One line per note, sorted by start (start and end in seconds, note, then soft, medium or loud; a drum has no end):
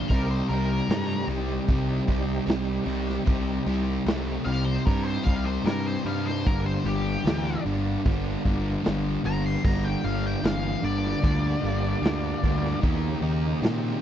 0.09 0.40 C2 medium
0.09 0.46 C3 medium
0.09 0.46 G3 medium
0.09 3.24 G3 medium
0.09 3.24 C4 medium
0.09 3.24 D#4 medium
0.09 3.24 G4 medium
0.09 0.29 A#4 medium
0.09 kick medium
0.09 open hi-hat medium
0.30 0.48 C5 medium
0.49 0.80 C2 medium
0.49 0.85 C3 medium
0.49 0.86 G3 medium
0.49 1.26 A#4 loud
0.49 open hi-hat medium
0.89 1.19 G2 medium
0.89 1.25 C3 medium
0.89 1.25 A3 medium
0.89 snare loud
0.89 open hi-hat medium
1.28 1.58 C2 medium
1.28 1.65 C3 medium
1.28 1.65 G3 medium
1.28 open hi-hat soft
1.68 1.99 C2 medium
1.68 2.04 C3 medium
1.68 2.05 G3 medium
1.68 kick loud
1.68 open hi-hat medium
2.08 2.38 C2 medium
2.08 2.44 C3 medium
2.08 2.44 G3 medium
2.08 kick medium
2.08 open hi-hat medium
2.47 2.78 C2 medium
2.47 2.83 C3 medium
2.47 2.83 G3 loud
2.47 snare loud
2.47 open hi-hat medium
2.86 3.17 C2 medium
2.86 3.22 C3 medium
2.86 3.22 G3 medium
2.86 open hi-hat medium
3.09 snare soft
3.25 3.57 C2 medium
3.25 3.62 C3 medium
3.25 3.62 G3 medium
3.25 6.42 C4 medium
3.25 6.42 D#4 medium
3.25 6.42 G4 medium
3.25 6.42 A#5 medium
3.25 kick loud
3.25 open hi-hat medium
3.66 3.97 C2 medium
3.66 4.02 C3 medium
3.66 4.03 G3 medium
3.66 open hi-hat medium
4.06 4.37 C2 medium
4.06 4.42 C3 medium
4.06 4.42 A3 medium
4.06 snare loud
4.06 open hi-hat medium
4.45 4.76 C2 medium
4.45 4.82 C3 medium
4.45 4.82 G3 medium
4.45 4.65 F5 loud
4.45 open hi-hat medium
4.65 4.86 C5 medium
4.86 5.17 G2 medium
4.86 5.22 C3 medium
4.86 5.22 G3 medium
4.86 5.04 A#4 medium
4.86 kick loud
4.86 open hi-hat medium
5.04 5.24 C5 medium
5.23 5.57 C2 medium
5.23 5.62 C3 medium
5.23 5.62 G3 medium
5.23 5.44 F5 medium
5.23 kick medium
5.23 open hi-hat medium
5.45 5.65 C5 medium
5.64 5.95 G2 medium
5.64 6.01 C3 medium
5.64 6.01 G3 medium
5.64 5.85 A#4 medium
5.64 snare medium
5.64 open hi-hat medium
5.87 6.06 C5 medium
6.05 6.48 G2 medium
6.05 6.41 C3 medium
6.05 6.41 G3 medium
6.05 6.25 F5 medium
6.05 open hi-hat medium
6.26 6.46 C5 medium
6.26 snare soft
6.45 6.76 G1 medium
6.45 6.81 G2 medium
6.45 6.81 D3 medium
6.45 9.61 A#3 medium
6.45 9.61 D4 medium
6.45 9.61 G4 medium
6.45 6.65 A#4 medium
6.45 9.61 F5 medium
6.45 kick loud
6.45 open hi-hat medium
6.66 6.85 C5 medium
6.84 7.15 G1 medium
6.84 7.21 G2 medium
6.84 7.21 D3 medium
6.84 7.63 G4 medium
6.84 open hi-hat medium
7.24 7.55 D2 medium
7.24 7.61 G2 medium
7.24 7.61 E3 loud
7.24 snare loud
7.24 open hi-hat medium
7.65 7.95 G1 medium
7.65 8.01 G2 medium
7.65 8.01 D3 medium
7.65 open hi-hat soft
8.05 8.36 G1 medium
8.05 8.40 G2 medium
8.05 8.41 D3 medium
8.05 kick loud
8.05 open hi-hat medium
8.45 8.76 G1 medium
8.45 8.81 G2 medium
8.45 8.81 D3 medium
8.45 kick medium
8.45 open hi-hat medium
8.83 9.16 G1 medium
8.83 9.20 G2 medium
8.83 9.20 D3 medium
8.83 snare loud
8.83 open hi-hat medium
9.25 9.55 G1 medium
9.25 9.60 G2 medium
9.25 9.60 D3 medium
9.25 9.44 A#5 medium
9.25 open hi-hat medium
9.46 9.64 C6 medium
9.64 9.95 G1 medium
9.64 10.00 G2 medium
9.64 10.00 D3 medium
9.64 9.91 B3 medium
9.64 9.91 D#4 medium
9.64 9.91 F#4 medium
9.64 9.91 G#4 medium
9.64 9.84 A#5 medium
9.64 kick loud
9.64 open hi-hat medium
9.85 10.04 G5 medium
9.90 12.80 A#3 medium
9.90 12.80 D4 medium
9.90 12.80 G4 medium
9.90 12.80 F5 medium
10.03 10.35 G1 medium
10.03 10.39 G2 medium
10.03 10.40 D3 medium
10.03 10.23 F5 medium
10.03 open hi-hat medium
10.27 10.45 G5 medium
10.42 10.74 G1 medium
10.42 10.79 G2 medium
10.42 10.79 E3 medium
10.42 10.83 F5 medium
10.42 snare loud
10.42 open hi-hat medium
10.83 11.14 G1 medium
10.83 11.19 G2 medium
10.83 11.19 D3 medium
10.83 12.79 D5 medium
10.83 open hi-hat medium
11.06 snare soft
11.22 11.54 D2 medium
11.22 11.58 G2 medium
11.22 11.59 D3 medium
11.22 kick loud
11.22 open hi-hat medium
11.61 11.94 G1 medium
11.61 11.98 G2 medium
11.61 11.98 D3 medium
11.65 open hi-hat medium
12.01 12.33 D2 medium
12.01 12.38 G2 medium
12.01 12.38 D3 medium
12.01 open hi-hat medium
12.06 snare loud
12.43 12.74 D2 medium
12.43 12.79 G2 medium
12.43 12.79 D3 medium
12.43 kick medium
12.43 open hi-hat medium
12.66 snare soft
12.81 13.13 D#2 medium
12.81 13.18 D#3 medium
12.81 13.18 A#3 medium
12.81 13.10 B3 medium
12.81 13.09 D4 medium
12.81 13.10 E4 medium
12.81 13.10 G#4 medium
12.81 kick loud
12.81 open hi-hat medium
13.08 14.02 C#3 medium
13.08 14.02 A#3 medium
13.08 14.02 D#4 medium
13.08 14.02 G4 medium
13.22 13.53 D#2 medium
13.22 13.58 D#3 medium
13.22 13.59 A#3 medium
13.22 open hi-hat medium
13.62 13.93 A#2 medium
13.62 13.99 D#3 medium
13.62 13.99 C4 medium
13.62 snare loud
13.62 open hi-hat medium